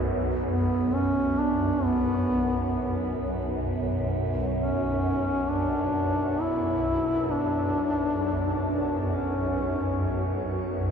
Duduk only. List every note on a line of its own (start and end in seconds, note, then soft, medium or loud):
0.52 0.96 B3 medium
0.94 1.41 C#4 loud
1.39 1.86 D4 medium
1.84 3.22 B3 medium
4.58 5.51 C#4 loud
5.50 6.43 D4 loud
6.41 7.32 E4 loud
7.31 8.68 D4 loud
8.70 9.17 D4 medium
9.15 10.51 C#4 medium